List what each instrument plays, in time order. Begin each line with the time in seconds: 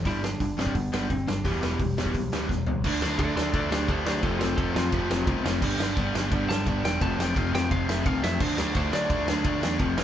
0.05 picked electric bass G1, overdriven electric guitar G2 D3 G3, lead electric guitar E4, kick, open hi-hat
0.22 overdriven electric guitar G2 D3, lead electric guitar D4, snare
0.40 picked electric bass G1, overdriven electric guitar G2 D3, kick, open hi-hat
0.57 picked electric bass G1, overdriven electric guitar G2 D3 G3, lead electric guitar C4, snare
0.66 kick
0.75 picked electric bass G1, overdriven electric guitar G2 D3, lead electric guitar B3, kick, open hi-hat
0.92 picked electric bass G1, overdriven electric guitar G2 D3 G3, lead electric guitar B3, snare
1.10 picked electric bass G1, overdriven electric guitar G2 D3, lead electric guitar C4, kick, open hi-hat
1.27 picked electric bass G1, overdriven electric guitar G2 D3, lead electric guitar D4, snare
1.44 picked electric bass E1, distorted electric guitar E2 B2, overdriven electric guitar E3 G3 B3, lead electric guitar G4, kick, open hi-hat
1.62 picked electric bass E1, distorted electric guitar E2 B2, overdriven electric guitar E3 G3 B3, snare
1.79 picked electric bass E1, distorted electric guitar E2 B2, overdriven electric guitar E3 G3, kick, open hi-hat
1.97 picked electric bass E1, distorted electric guitar E2 B2, overdriven electric guitar E3 G3 B3, snare
2.06 kick
2.14 picked electric bass B1, distorted electric guitar E2 B2, overdriven electric guitar E3 G3, kick, open hi-hat
2.32 picked electric bass D2, distorted electric guitar E2 B2, overdriven electric guitar E3 G3 B3, snare
2.49 picked electric bass E1, distorted electric guitar E2 B2, overdriven electric guitar E3 G3, kick, snare
2.67 picked electric bass C2, distorted electric guitar E2 B2, overdriven electric guitar E3 G3, floor tom
2.84 picked electric bass D2, overdriven electric guitar D3 F3 A3 D4, kick, crash
3.02 picked electric bass D2, overdriven electric guitar D3 F3 A3 D4, snare
3.19 picked electric bass D2, overdriven electric guitar D3 F3 A3 D4, lead electric guitar A4 D5, kick, ride
3.36 picked electric bass D2, overdriven electric guitar D3 F3 A3 D4, lead electric guitar A4 D5, snare
3.53 picked electric bass D2, overdriven electric guitar D3 F3 A3 D4, lead electric guitar A4 D5, kick, ride
3.71 picked electric bass D2, overdriven electric guitar D3 F3 A3 D4, lead electric guitar G4 C5, snare
3.88 picked electric bass D2, overdriven electric guitar D3 F3 A3 D4, lead electric guitar G4 C5, kick, ride
4.06 picked electric bass D2, overdriven electric guitar D3 F3 A3 D4, lead electric guitar G4 C5, snare
4.22 picked electric bass F1, overdriven electric guitar F2 C3 F3 A3 C4, lead electric guitar F4 A4, kick, ride
4.39 overdriven electric guitar F2 C3 F3 A3 C4, lead electric guitar F4 A4, snare
4.56 picked electric bass F1, overdriven electric guitar F2 C3 F3 A3 C4, lead electric guitar F4 A4, kick, ride
4.74 overdriven electric guitar F2 C3 F3 A3 C4, picked electric bass F2, lead electric guitar F4, snare
4.92 picked electric bass F1, overdriven electric guitar F2 C3 F3 A3 C4, kick, ride
5.10 picked electric bass F1, overdriven electric guitar F2 C3 F3 A3 C4, snare
5.27 picked electric bass C2, overdriven electric guitar F2 C3 F3 A3 C4, kick, ride
5.44 picked electric bass F1, overdriven electric guitar F2 C3 F3 A3 C4, snare
5.62 picked electric bass G1, overdriven electric guitar G2 D3 G3 B3 D4, kick, crash
5.79 picked electric bass G1, overdriven electric guitar G2 D3 G3 B3 D4, snare
5.97 picked electric bass G1, overdriven electric guitar G2 D3 G3 B3 D4, kick, ride
6.14 picked electric bass G1, overdriven electric guitar G2 D3 G3 B3 D4, snare
6.31 picked electric bass G1, overdriven electric guitar G2 D3 G3 B3 D4, kick, ride
6.48 picked electric bass G1, overdriven electric guitar G2 D3 G3 B3 D4, lead electric guitar A5, snare
6.67 picked electric bass G1, overdriven electric guitar G2 D3 G3 B3 D4, kick, ride
6.84 picked electric bass E1, overdriven electric guitar G2 D3 G3 B3 D4, lead electric guitar G5, snare
7.01 picked electric bass F1, overdriven electric guitar F2 C3 F3 A3 C4, lead electric guitar A5, kick, ride
7.18 overdriven electric guitar F2 C3 F3 A3 C4, lead electric guitar G5, snare
7.36 picked electric bass F1, overdriven electric guitar F2 C3 F3 A3 C4, lead electric guitar F5, kick, ride
7.53 overdriven electric guitar F2 C3 F3 A3 C4, picked electric bass F2, lead electric guitar G5, snare
7.70 picked electric bass F1, overdriven electric guitar F2 C3 F3 A3 C4, lead electric guitar F5, kick, ride
7.88 picked electric bass F1, overdriven electric guitar F2 C3 F3 A3 C4, lead electric guitar E5, snare
8.06 picked electric bass C2, overdriven electric guitar F2 C3 F3 A3 C4, lead electric guitar F5, kick, ride
8.24 picked electric bass F2, overdriven electric guitar F2 C3 F3 A3 C4, lead electric guitar E5, snare
8.40 picked electric bass D2, overdriven electric guitar D3 F3 A3 D4, lead electric guitar C5, kick, crash
8.57 picked electric bass D2, overdriven electric guitar D3 F3 A3 D4, lead electric guitar D5, snare
8.75 picked electric bass D2, overdriven electric guitar D3 F3 A3 D4, lead electric guitar C5, kick, ride
8.93 picked electric bass D2, overdriven electric guitar D3 F3 A3 D4, lead electric guitar D5, snare
9.10 picked electric bass D2, overdriven electric guitar D3 F3 A3 D4, kick, ride
9.28 picked electric bass D2, overdriven electric guitar D3 F3 A3 D4, snare
9.44 picked electric bass D2, overdriven electric guitar D3 F3 A3 D4, kick, ride
9.63 picked electric bass E2, overdriven electric guitar D3 F3 A3 D4, snare
9.79 picked electric bass F1, overdriven electric guitar F2 C3 F3 A3 C4, kick, ride
9.97 overdriven electric guitar F2 C3 F3 A3 C4, snare